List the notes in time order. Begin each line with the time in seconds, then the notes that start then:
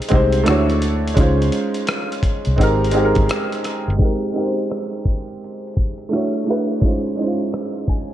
Already playing: G#3 C4 D#4 G4 A#4
0.02 closed hi-hat
0.08 C2 G#3 C4 D#4, kick, closed hi-hat
0.13 G4 C5
0.32 closed hi-hat
0.44 D2 A3 D4 E4, closed hi-hat
0.48 F#4 C#5, cross-stick
0.70 closed hi-hat
0.82 closed hi-hat
1.08 closed hi-hat
1.14 C#2 G#3 C#4 D#4, kick, closed hi-hat
1.20 F4 C5
1.42 closed hi-hat
1.52 closed hi-hat
1.74 closed hi-hat
1.87 cross-stick, closed hi-hat
2.12 closed hi-hat
2.23 kick, closed hi-hat
2.45 C2, closed hi-hat
2.56 G#1 G#3 C4 D#4, kick
2.61 G4 A#4, closed hi-hat
2.84 closed hi-hat
2.91 G#3 C4 D#4, closed hi-hat
2.96 G4 G#4
3.05 A#4
3.15 G#1, kick, closed hi-hat
3.29 cross-stick, closed hi-hat
3.52 closed hi-hat
3.64 cross-stick, closed hi-hat
3.88 G1, closed hi-hat
3.97 G#3 C4 D#4, kick, closed hi-hat
4.02 G4 A#4
4.25 closed hi-hat
4.32 G#3 C4 D#4, closed hi-hat
4.37 G4 A#4
4.45 C5
4.57 closed hi-hat
4.70 cross-stick, closed hi-hat
4.95 closed hi-hat
5.05 kick, closed hi-hat
5.28 closed hi-hat
5.44 closed hi-hat
5.67 closed hi-hat
5.74 kick, closed hi-hat
5.98 closed hi-hat
6.09 A3 D4 E4, closed hi-hat
6.13 F#4 C#5, cross-stick
6.35 closed hi-hat
6.44 A3 D4 E4, closed hi-hat
6.49 F#4 B4
6.73 closed hi-hat
6.80 G#3 C#4 D#4, kick, closed hi-hat
6.85 F4 C5
7.07 closed hi-hat
7.15 G#3 C#4 D#4, closed hi-hat
7.20 E4 C5
7.27 F4
7.39 closed hi-hat
7.52 cross-stick, closed hi-hat
7.77 closed hi-hat
7.88 G#5, kick, closed hi-hat
8.10 closed hi-hat